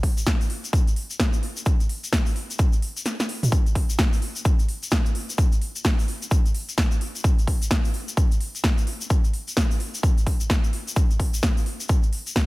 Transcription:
0.03 kick, open hi-hat
0.17 closed hi-hat, shaker
0.26 kick, snare, closed hi-hat, shaker
0.41 open hi-hat, shaker
0.50 open hi-hat
0.64 closed hi-hat, shaker
0.73 kick, closed hi-hat, shaker
0.87 closed hi-hat, shaker
0.96 open hi-hat
1.10 closed hi-hat, shaker
1.20 kick, snare, closed hi-hat, shaker
1.33 closed hi-hat, shaker
1.43 open hi-hat
1.57 closed hi-hat, shaker
1.66 kick, closed hi-hat, shaker
1.80 closed hi-hat, shaker
1.89 open hi-hat
2.04 closed hi-hat, shaker
2.13 kick, snare, closed hi-hat, shaker
2.26 open hi-hat, shaker
2.36 open hi-hat
2.50 closed hi-hat, shaker
2.59 kick, closed hi-hat, shaker
2.72 closed hi-hat, shaker
2.82 open hi-hat
2.97 closed hi-hat, shaker
3.05 snare, closed hi-hat, shaker
3.20 snare, closed hi-hat, shaker
3.29 open hi-hat
3.43 closed hi-hat, mid tom, shaker
3.52 kick, closed hi-hat
3.66 closed hi-hat, shaker
3.75 kick, open hi-hat
3.90 closed hi-hat, shaker
3.99 kick, snare, closed hi-hat, shaker
4.13 open hi-hat, shaker
4.22 open hi-hat
4.36 closed hi-hat, shaker
4.45 kick, closed hi-hat, shaker
4.59 closed hi-hat, shaker
4.69 open hi-hat
4.83 closed hi-hat, shaker
4.91 kick, snare, closed hi-hat, shaker
5.06 closed hi-hat, shaker
5.15 open hi-hat
5.29 closed hi-hat, shaker
5.38 kick, closed hi-hat, shaker
5.52 closed hi-hat, shaker
5.62 open hi-hat
5.76 closed hi-hat, shaker
5.84 kick, snare, closed hi-hat, shaker
5.99 open hi-hat, shaker
6.08 open hi-hat
6.22 closed hi-hat, shaker
6.31 kick, closed hi-hat, shaker
6.46 closed hi-hat, shaker
6.55 open hi-hat
6.69 closed hi-hat, shaker
6.78 kick, snare, closed hi-hat, shaker
6.91 closed hi-hat, shaker
7.01 open hi-hat
7.15 closed hi-hat, shaker
7.24 kick, closed hi-hat, shaker
7.39 closed hi-hat, shaker
7.47 kick, open hi-hat
7.62 closed hi-hat, shaker
7.71 kick, snare, closed hi-hat
7.84 open hi-hat, shaker
7.94 open hi-hat
8.08 closed hi-hat, shaker
8.17 kick, closed hi-hat, shaker
8.32 closed hi-hat, shaker
8.41 open hi-hat
8.55 closed hi-hat, shaker
8.64 kick, snare, closed hi-hat
8.78 closed hi-hat, shaker
8.87 open hi-hat
9.01 closed hi-hat, shaker
9.10 kick, closed hi-hat, shaker
9.24 closed hi-hat, shaker
9.34 open hi-hat
9.48 closed hi-hat, shaker
9.57 kick, snare, closed hi-hat, shaker
9.71 open hi-hat, shaker
9.80 open hi-hat
9.94 closed hi-hat, shaker
10.03 kick, closed hi-hat, shaker
10.18 closed hi-hat, shaker
10.27 kick, open hi-hat
10.40 closed hi-hat, shaker
10.50 kick, snare, closed hi-hat, shaker
10.64 closed hi-hat, shaker
10.73 open hi-hat
10.87 closed hi-hat, shaker
10.96 kick, closed hi-hat, shaker
11.11 closed hi-hat, shaker
11.20 kick, open hi-hat
11.34 closed hi-hat, shaker
11.43 kick, snare, closed hi-hat, shaker
11.57 open hi-hat, shaker
11.66 open hi-hat
11.80 closed hi-hat, shaker
11.89 kick, closed hi-hat, shaker
12.03 closed hi-hat, shaker
12.13 open hi-hat
12.27 closed hi-hat, shaker
12.36 kick, snare, closed hi-hat

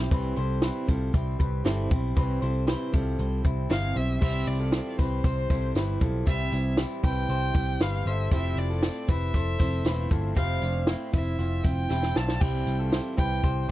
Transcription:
Already playing: G3 C4 E4 G4 C5
0.11 C2 C3 E3 G3 C4 E4 G4 B4 C5, kick, closed hi-hat
0.36 C2 G3 C4 E4 A4 C5, closed hi-hat
0.62 C3 E3 G3 C4 E4 G4 B4 C5, snare, closed hi-hat
0.88 C2 G3 C4 E4 F4 A4 C5, kick, closed hi-hat
1.13 C2 G3 C4 E4 G4 C5, kick, closed hi-hat
1.39 C2 G4 B4, kick, closed hi-hat
1.64 G1 C3 E3 G3 C4 E4 A4 C5, snare, closed hi-hat
1.90 B1 G3 C4 E4 G4 C5, kick, closed hi-hat
2.16 C2 C3 E3 G3 C4 E4 G4 B4 C5, kick, closed hi-hat
2.42 C2 G3 C4 E4 A4 C5, closed hi-hat
2.67 C3 E3 G3 C4 E4 G4 B4 C5, snare, closed hi-hat
2.93 C2 G3 C4 E4 F4 A4 C5, kick, closed hi-hat
3.18 C2 G3 C4 E4 C5, closed hi-hat
3.44 C2 E4 G4, kick, closed hi-hat
3.70 G1 C3 E3 G3 C4 E4 C5 F5, snare, closed hi-hat
3.95 B1 G3 C4 E4 C5 E5, closed hi-hat
4.21 C2 C3 E3 G3 C4 E4 G4 C5 E5, kick, crash, tambourine
4.47 C2 D5, closed hi-hat, tambourine
4.59 F4 A4
4.72 G3 C4 E4 C5, snare, closed hi-hat, tambourine
4.98 C2 G3 C4 E4 G4 B4 C5, kick, closed hi-hat, tambourine
5.24 C2 G4 C5, kick, closed hi-hat, tambourine
5.50 C2 G3 C4 E4 A4 C5, kick, closed hi-hat, tambourine
5.75 G1 G3 C4 E4 G4 B4 C5, snare, closed hi-hat, tambourine
6.01 B1 F4 A4, kick, closed hi-hat
6.26 C2 C3 E3 G3 C4 E4 G4 C5 E5, kick, closed hi-hat, tambourine
6.52 C2 C4 E4, closed hi-hat, tambourine
6.77 G3 C4 E4 G4 C5, snare, closed hi-hat, tambourine
7.03 C2 G3 C4 E4 G4 B4 C5 G5, kick, closed hi-hat, tambourine
7.29 C2 G4 C5, closed hi-hat, tambourine
7.54 C2 G3 C4 E4 C5, kick, closed hi-hat, tambourine
7.80 G1 G3 C4 E4 G4 B4 C5 F5, snare, closed hi-hat, tambourine
8.06 G1 A4 C5 E5, closed hi-hat
8.31 F1 F3 A3 C4 E4 G4 C5 E5, kick, closed hi-hat, tambourine
8.56 F1 D5, closed hi-hat, tambourine
8.70 F4 A4
8.82 A3 C4 E4 C5, snare, closed hi-hat, tambourine
9.08 F1 C4 E4 G4 B4 C5 E5, kick, closed hi-hat, tambourine
9.34 F1 A4 C5, kick, closed hi-hat, tambourine
9.59 F1 C4 E4 A4 C5, kick, closed hi-hat, tambourine
9.84 E1 A3 C4 E4 F4 B4 C5, snare, closed hi-hat, tambourine
10.11 G1 F4 A4, kick, closed hi-hat, tambourine
10.35 F1 F3 A3 C4 E4 G4 C5 F5, kick, closed hi-hat, tambourine
10.62 F1 D4 F4, closed hi-hat, tambourine
10.87 A3 C4 E4 C5, snare, closed hi-hat, tambourine
11.12 F1 C4 E4 C5 E5, kick, closed hi-hat, tambourine
11.39 F1 C4 F4, closed hi-hat, tambourine
11.64 F1 C4 E4 C5 G5, kick, closed hi-hat, tambourine
11.89 E1 A3 C4 E4 G4 C5, snare, tambourine
12.03 snare
12.16 B1 D4 F4 A5, snare, tambourine
12.28 snare
12.41 C2 C3 E3 G3 C4 E4 G4 C5 G5, kick, tambourine, crash
12.67 C2, closed hi-hat, tambourine
12.79 F4 A4
12.91 G3 C4 E4 C5, snare, closed hi-hat, tambourine
13.16 C2 G3 C4 E4 G4 B4 C5 G5, kick, closed hi-hat, tambourine
13.43 C2 G4 C5, kick, closed hi-hat, tambourine

